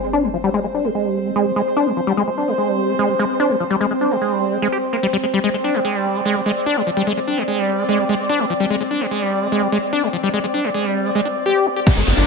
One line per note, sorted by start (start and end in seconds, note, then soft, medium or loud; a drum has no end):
0.00 11.87 C4 medium
0.00 5.36 C5 medium
0.00 impact medium
0.13 0.25 D4 loud
0.23 0.29 G3 medium
0.34 0.37 F3 medium
0.44 0.49 G3 loud
0.54 0.60 G#3 loud
0.64 0.66 G#3 medium
0.74 0.86 D4 medium
0.85 0.90 G3 medium
0.95 1.07 G#3 medium
1.05 1.27 G3 medium
1.25 1.31 G#3 loud
1.36 1.47 G#3 loud
1.46 1.51 G3 medium
1.56 1.62 G#3 loud
1.76 1.88 D4 loud
1.87 1.92 G3 medium
1.97 2.01 F3 medium
2.07 2.13 G3 loud
2.17 2.23 G#3 loud
2.27 2.30 G#3 medium
2.38 2.49 D4 medium
2.48 2.54 G3 medium
2.58 2.70 G#3 medium
2.68 2.90 G3 medium
2.89 2.94 G#3 loud
2.99 3.11 G#3 loud
3.09 3.15 G3 medium
3.19 3.25 G#3 loud
3.40 3.51 D4 loud
3.50 3.56 G3 medium
3.60 3.64 F3 medium
3.70 3.76 G3 loud
3.81 3.86 G#3 medium
3.91 3.93 G#3 medium
4.01 4.13 D4 medium
4.11 4.17 G3 medium
4.21 4.33 G#3 medium
4.32 4.53 G3 medium
4.52 4.58 G#3 loud
4.62 4.68 G#3 loud
4.72 4.78 G4 medium
4.93 4.97 A#3 medium
5.03 5.07 G3 loud
5.13 5.17 G3 loud
5.23 5.26 G#3 medium
5.34 5.39 G3 loud
5.34 11.85 D5 medium
5.44 5.49 G#3 loud
5.54 5.56 G#3 medium
5.64 5.76 D4 medium
5.74 5.80 G3 medium
5.85 5.96 G#3 medium
5.95 6.17 G3 medium
6.15 6.21 G#3 loud
6.25 6.37 G#3 loud
6.36 6.41 G3 medium
6.46 6.51 G#3 loud
6.66 6.78 D4 loud
6.76 6.82 G3 medium
6.87 6.90 F3 medium
6.97 7.02 G3 loud
7.07 7.13 G#3 loud
7.17 7.20 G#3 medium
7.27 7.39 D4 medium
7.38 7.43 G3 medium
7.48 7.60 G#3 medium
7.58 7.80 G3 medium
7.78 7.84 G#3 loud
7.89 8.00 G#3 loud
7.99 8.05 G3 medium
8.09 8.15 G#3 loud
8.29 8.41 D4 loud
8.40 8.45 G3 medium
8.50 8.54 F3 medium
8.60 8.66 G3 loud
8.70 8.76 G#3 loud
8.81 8.83 G#3 medium
8.91 9.02 D4 medium
9.01 9.07 G3 medium
9.11 9.23 G#3 medium
9.21 9.43 G3 medium
9.42 9.47 G#3 loud
9.52 9.64 G#3 loud
9.62 9.68 G3 medium
9.72 9.78 G#3 loud
9.93 10.04 D4 loud
10.03 10.09 G3 medium
10.13 10.17 F3 medium
10.23 10.29 G3 loud
10.34 10.39 G#3 loud
10.44 10.46 G#3 medium
10.54 10.66 D4 medium
10.64 10.70 G3 medium
10.74 10.86 G#3 medium
10.85 11.06 G3 medium
11.05 11.11 G#3 loud
11.15 11.21 G#3 loud
11.25 11.28 D4 medium
11.46 11.68 G4 loud
11.66 11.68 G3 medium
11.76 11.80 G4 medium
11.87 11.92 G3 loud
11.87 12.27 D4 medium
11.87 12.27 D5 medium
11.87 kick loud
11.87 closed hi-hat loud
11.87 crash loud
11.87 downlifter medium
11.97 12.03 G1 medium
11.97 12.02 G#3 loud
11.97 closed hi-hat soft
12.07 12.13 G1 loud
12.07 12.09 G#3 medium
12.07 open hi-hat loud
12.17 12.24 G1 medium
12.17 12.27 D4 medium
12.17 closed hi-hat soft